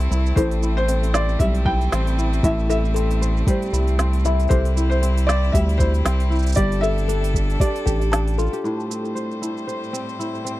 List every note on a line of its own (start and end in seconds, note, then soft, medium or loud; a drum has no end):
0.00 0.42 C3 medium
0.00 1.40 G3 medium
0.00 4.47 A3 medium
0.00 0.88 C4 medium
0.00 6.54 C4 medium
0.00 0.10 E4 medium
0.00 0.33 E4 medium
0.00 0.43 C5 medium
0.00 open hi-hat soft
0.00 shaker soft
0.11 0.33 C2 medium
0.11 0.63 E4 medium
0.11 shaker medium
0.26 shaker soft
0.36 1.37 A1 medium
0.36 2.43 A2 medium
0.36 4.47 G3 medium
0.36 0.62 A4 medium
0.36 0.75 C5 medium
0.36 kick loud
0.36 open hi-hat medium
0.36 shaker soft
0.51 open hi-hat soft
0.51 shaker soft
0.63 1.65 E4 medium
0.63 shaker medium
0.77 1.16 C5 loud
0.77 shaker soft
0.88 1.92 C4 medium
0.88 open hi-hat medium
0.88 shaker soft
1.03 open hi-hat soft
1.03 shaker soft
1.14 3.20 C5 medium
1.14 1.38 D5 loud
1.14 snare medium
1.14 shaker medium
1.29 shaker soft
1.39 1.89 B1 medium
1.39 3.47 G3 medium
1.39 1.67 E5 loud
1.39 kick loud
1.39 open hi-hat medium
1.39 shaker soft
1.55 open hi-hat soft
1.55 shaker soft
1.66 2.18 E4 medium
1.66 2.46 G5 loud
1.66 kick loud
1.81 open hi-hat soft
1.81 shaker soft
1.92 2.41 A1 medium
1.92 2.95 C4 medium
1.92 snare medium
1.92 open hi-hat medium
1.92 shaker soft
2.07 open hi-hat soft
2.07 shaker soft
2.18 2.69 E4 medium
2.18 shaker medium
2.33 open hi-hat soft
2.33 shaker soft
2.43 3.44 A1 loud
2.43 4.56 A2 medium
2.43 2.68 E5 loud
2.43 kick loud
2.43 open hi-hat medium
2.43 shaker soft
2.59 shaker soft
2.70 3.72 E4 medium
2.70 2.93 A4 medium
2.70 3.50 E5 loud
2.70 shaker medium
2.85 shaker soft
2.94 3.98 C4 medium
2.94 3.11 A4 medium
2.94 open hi-hat medium
2.94 shaker soft
3.11 open hi-hat soft
3.11 shaker soft
3.21 4.57 C5 medium
3.21 shaker medium
3.37 shaker soft
3.47 5.54 G3 medium
3.47 3.72 G4 medium
3.47 4.21 C5 medium
3.47 kick loud
3.47 open hi-hat medium
3.47 shaker soft
3.62 open hi-hat soft
3.62 shaker soft
3.66 shaker soft
3.70 4.47 C2 medium
3.70 4.24 E4 medium
3.70 shaker soft
3.74 shaker medium
3.79 shaker soft
3.82 shaker soft
3.87 open hi-hat soft
3.87 shaker soft
3.98 5.02 C4 medium
3.98 snare medium
3.98 open hi-hat medium
3.98 shaker soft
4.13 open hi-hat soft
4.19 shaker soft
4.25 4.76 E4 medium
4.25 4.50 E5 loud
4.25 shaker medium
4.40 open hi-hat soft
4.40 shaker soft
4.43 shaker soft
4.48 5.51 C2 medium
4.48 6.63 C3 medium
4.48 8.61 G3 medium
4.48 4.75 A4 medium
4.48 4.88 C5 medium
4.48 kick loud
4.48 open hi-hat medium
4.48 shaker soft
4.51 6.56 E4 medium
4.51 shaker soft
4.65 open hi-hat soft
4.65 shaker soft
4.76 5.79 E4 medium
4.76 shaker medium
4.90 5.29 C5 loud
4.90 shaker soft
5.02 6.04 C4 medium
5.02 open hi-hat medium
5.02 shaker soft
5.17 open hi-hat soft
5.17 shaker soft
5.27 6.63 C5 medium
5.27 5.54 D5 loud
5.27 snare medium
5.27 shaker medium
5.44 shaker soft
5.52 6.02 D2 loud
5.52 6.56 G3 medium
5.52 5.80 E5 loud
5.52 kick loud
5.52 open hi-hat medium
5.52 shaker soft
5.69 open hi-hat soft
5.69 shaker soft
5.73 shaker soft
5.77 6.30 E4 medium
5.77 6.59 C5 loud
5.77 kick loud
5.77 shaker soft
5.80 shaker medium
5.94 open hi-hat soft
5.94 shaker soft
6.05 6.54 C2 medium
6.05 7.85 C4 medium
6.05 snare medium
6.05 open hi-hat medium
6.05 shaker soft
6.20 open hi-hat soft
6.20 shaker soft
6.30 7.87 E4 medium
6.30 shaker soft
6.35 shaker soft
6.39 shaker soft
6.43 open hi-hat soft
6.43 shaker soft
6.47 shaker medium
6.49 shaker medium
6.52 shaker medium
6.55 7.58 G1 loud
6.55 8.70 G3 medium
6.55 8.62 D4 medium
6.55 8.62 A4 medium
6.55 6.83 D5 loud
6.55 kick loud
6.55 open hi-hat medium
6.55 shaker medium
6.57 shaker soft
6.72 open hi-hat soft
6.72 shaker soft
6.81 7.85 G4 medium
6.81 7.07 A4 medium
6.81 7.62 E5 loud
6.81 shaker medium
6.98 open hi-hat soft
6.98 shaker soft
7.08 7.60 D4 medium
7.08 7.25 A4 medium
7.08 open hi-hat medium
7.08 shaker soft
7.24 open hi-hat soft
7.24 shaker soft
7.34 8.70 A4 medium
7.34 kick medium
7.34 shaker medium
7.50 open hi-hat soft
7.50 shaker soft
7.60 8.11 D4 medium
7.60 7.86 G4 medium
7.60 8.34 D5 medium
7.60 kick loud
7.60 open hi-hat medium
7.60 shaker soft
7.76 open hi-hat soft
7.76 shaker soft
7.86 8.49 A1 loud
7.86 8.52 G4 medium
7.86 8.11 A4 medium
7.86 kick medium
7.86 shaker medium
8.01 open hi-hat soft
8.01 shaker soft
8.12 9.79 D4 medium
8.12 8.28 A5 medium
8.12 snare medium
8.12 open hi-hat medium
8.12 shaker soft
8.28 open hi-hat soft
8.28 shaker soft
8.33 shaker soft
8.38 9.48 F4 medium
8.38 8.55 A4 medium
8.38 shaker medium
8.46 shaker soft
8.53 9.94 G4 medium
8.53 open hi-hat soft
8.53 shaker soft
8.64 10.60 A2 medium
8.64 10.60 G3 medium
8.64 10.60 C5 medium
8.64 shaker soft
8.80 shaker soft
8.90 9.93 C4 soft
8.90 shaker medium
9.05 shaker soft
9.15 9.67 C5 medium
9.15 shaker soft
9.31 shaker soft
9.42 10.19 E4 soft
9.42 shaker medium
9.57 shaker soft
9.67 10.60 C5 medium
9.67 shaker soft
9.84 shaker soft
9.93 10.44 C4 medium
9.93 shaker medium
10.09 shaker soft
10.19 10.60 E4 medium
10.19 shaker soft
10.35 shaker soft
10.45 10.60 C4 soft
10.45 shaker medium